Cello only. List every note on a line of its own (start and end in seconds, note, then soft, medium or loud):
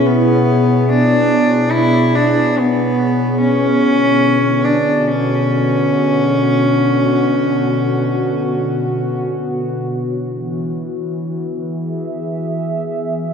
0.07 0.90 B3 medium
0.89 1.73 D4 loud
1.72 2.17 E4 loud
2.15 2.60 D4 medium
2.59 3.40 B3 medium
3.41 4.66 C#4 loud
4.64 5.08 D4 medium
5.07 9.23 C#4 medium